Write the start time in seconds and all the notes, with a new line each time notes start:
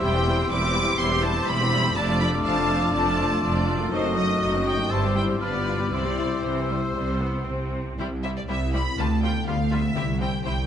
Already playing: E2 C4 E4 G4 C5 E6
0.01 E1 E2 G3 C4 E4 G4 C5 G5
0.15 C4 G4
0.27 G3 E4
0.39 C4 G4
0.50 E1 E2 G3 E4 B4 D6
0.63 C4 G4
0.75 G3 E4
0.87 C4 G4
0.98 E1 E2 G3 E4 C5 C6
1.12 C4 G4
1.23 G3 E4 A5
1.36 C4 G4
1.47 E1 E2 G3 E4 B5
1.61 C4 G4
1.73 G3 E4
1.78 F2
1.83 A3 C4 G4
1.88 D4
1.92 F4
1.96 F1 F2 F3 A3 D4 A4 D5 A5 D6
2.10 A3 F4
2.20 F3 D4 B5
2.34 A3 F4
2.44 F1 F2 F3 D4 F5 A5
2.58 A3 F4
2.70 F3 D4
2.83 A3 F4
2.94 F1 F2 F3 D4 F4 D5 A5
3.07 A3 F4
3.19 F3 D4
3.31 A3 F4
3.43 F1 F2 F3 D4 D5
3.56 A3 F4
3.69 F3 D4
3.74 F#2
3.78 A3 F4
3.83 C4
3.87 D#4 C5
3.92 F#1 F#2 F#3 D#4 F#4 D#5 D#6
4.05 A3 C4
4.17 F#3 D#4 D#5
4.28 A3 C4
4.41 F#1 F#2 F#3 D#4 D#5
4.53 A3 C4
4.66 F#3 D#4 G5
4.73 G2
4.77 G3 A3 C4
4.82 C4
4.86 E4
4.90 G1 G2 G3 C4 E4 G4 C5 A5 E6
5.03 C4 G4
5.16 G3 E4 G5
5.23 G2
5.27 G3 C4 G4
5.32 B3
5.36 D4 F4
5.41 G1 G2 B3 F4 B4 D5 F6
5.53 B3 G4
5.66 D4 F4
5.73 C3
5.78 G3 B3 G4
5.82 C4
5.86 E4
5.92 C2 C3 G3 C4 E4 C5 D5 E6
6.05 C4 G4
6.19 G3 E4
6.31 C4 G4
6.44 C2 C3 E3 C5
6.70 G3
6.95 C2 C3 G3
7.21 B3
7.47 C2 C3 C4
7.99 C2 C3 G3 E4 G4 C5
8.23 G3 C4 E4 G4 C5 E5
8.37 D5
8.49 C2 G3 E4 G4 C5 E5
8.73 G3 C4 E4 G4 C5 B5
8.98 D2 D3 G3 F4 G4 B4 A5
9.23 G3 B3 F4 G4 B4 G5
9.47 D2 G3 F4 G4 B4 F5
9.71 G3 B3 F4 G4 B4 E5
9.96 C2 C3 C4 E4 G4 C5
10.20 C4 E4 G4 C5 G5
10.44 C2 C4 E4 G4 C5 G5